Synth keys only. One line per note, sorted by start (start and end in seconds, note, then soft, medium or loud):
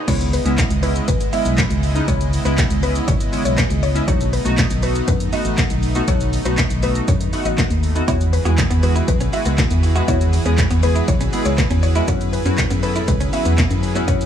0.08 0.28 G#3 medium
0.08 0.28 B3 medium
0.08 0.28 C#4 medium
0.08 0.28 E4 medium
0.45 0.66 G#3 medium
0.45 0.66 B3 medium
0.45 0.66 C#4 medium
0.45 0.66 E4 medium
0.83 1.10 G#3 medium
0.83 1.10 B3 medium
0.83 1.10 C#4 medium
0.83 1.10 E4 medium
1.33 1.67 G#3 medium
1.33 1.67 B3 medium
1.33 1.67 C#4 medium
1.33 1.67 E4 medium
1.95 2.02 G#3 medium
1.95 2.02 B3 medium
1.95 2.02 C#4 medium
1.95 2.02 D#4 medium
2.08 2.28 G#3 medium
2.08 2.28 B3 medium
2.08 2.28 C#4 medium
2.08 2.28 E4 medium
2.45 2.65 G#3 medium
2.45 2.66 B3 medium
2.45 2.66 C#4 medium
2.45 2.66 E4 medium
2.83 3.10 G#3 medium
2.83 3.10 B3 medium
2.83 3.10 C#4 medium
2.83 3.10 E4 medium
3.32 3.66 G#3 medium
3.32 3.66 B3 medium
3.32 3.67 C#4 medium
3.32 3.67 E4 medium
3.95 4.02 G#3 medium
3.95 4.02 B3 medium
3.95 4.02 C#4 medium
3.95 4.02 E4 medium
4.07 4.28 A3 medium
4.07 4.28 B3 medium
4.07 4.28 D#4 medium
4.07 4.28 F#4 medium
4.45 4.65 A3 medium
4.45 4.65 B3 medium
4.45 4.66 D#4 medium
4.45 4.66 F#4 medium
4.82 5.10 A3 medium
4.82 5.10 B3 medium
4.82 5.10 D#4 medium
4.82 5.10 F#4 medium
5.32 5.66 A3 medium
5.32 5.66 B3 medium
5.32 5.67 D#4 medium
5.32 5.67 F#4 medium
5.95 6.02 A3 medium
5.95 6.02 B3 medium
5.95 6.02 D#4 medium
5.95 6.02 F#4 medium
6.08 6.28 A3 medium
6.08 6.28 B3 medium
6.08 6.28 D#4 medium
6.08 6.28 F#4 medium
6.45 6.66 A3 medium
6.45 6.66 B3 medium
6.45 6.66 D#4 medium
6.45 6.66 F#4 medium
6.83 7.10 A3 medium
6.83 7.10 B3 medium
6.83 7.10 D#4 medium
6.83 7.10 F#4 medium
7.33 7.67 A3 medium
7.33 7.67 B3 medium
7.33 7.67 D#4 medium
7.33 7.67 F#4 medium
7.95 8.02 A3 medium
7.95 8.02 B3 medium
7.95 8.02 D#4 medium
7.95 8.02 F#4 medium
8.08 8.28 G#3 medium
8.08 8.28 B3 medium
8.08 8.28 E4 medium
8.08 8.28 F#4 medium
8.45 8.65 G#3 medium
8.45 8.66 B3 medium
8.45 8.66 E4 medium
8.45 8.66 G#4 medium
8.83 9.10 G#3 medium
8.83 9.10 B3 medium
8.83 9.10 E4 medium
8.83 9.10 F#4 medium
9.33 9.66 G#3 medium
9.33 9.66 B3 medium
9.33 9.67 E4 medium
9.33 9.67 F#4 medium
9.95 10.02 G#3 medium
9.95 10.02 B3 medium
9.95 10.02 E4 medium
9.95 10.02 F#4 medium
10.08 10.28 G#3 medium
10.08 10.28 B3 medium
10.08 10.28 E4 medium
10.08 10.28 F#4 medium
10.45 10.66 G#3 medium
10.45 10.66 B3 medium
10.45 10.66 E4 medium
10.45 10.66 G#4 medium
10.83 11.10 G#3 medium
10.83 11.10 B3 medium
10.83 11.10 E4 medium
10.83 11.10 G#4 medium
11.33 11.67 G#3 medium
11.33 11.67 B3 medium
11.33 11.67 E4 medium
11.33 11.67 G#4 medium
11.95 12.02 G#3 medium
11.95 12.02 B3 medium
11.95 12.02 E4 medium
11.95 12.02 F#4 medium
12.08 12.28 B3 medium
12.08 12.28 C#4 medium
12.08 12.28 E4 medium
12.08 12.28 F#4 medium
12.45 12.66 B3 medium
12.45 12.66 C#4 medium
12.45 12.66 E4 medium
12.45 12.66 F#4 medium
12.83 13.10 B3 medium
12.83 13.10 C#4 medium
12.83 13.10 E4 medium
12.83 13.10 A4 medium
13.33 13.67 B3 medium
13.33 13.67 C#4 medium
13.33 13.67 E4 medium
13.33 13.67 F#4 medium
13.95 14.02 B3 medium
13.95 14.02 C#4 medium
13.95 14.02 E4 medium
13.95 14.02 F#4 medium
14.08 14.26 B3 medium
14.08 14.26 C#4 medium
14.08 14.26 E4 medium
14.08 14.26 F#4 medium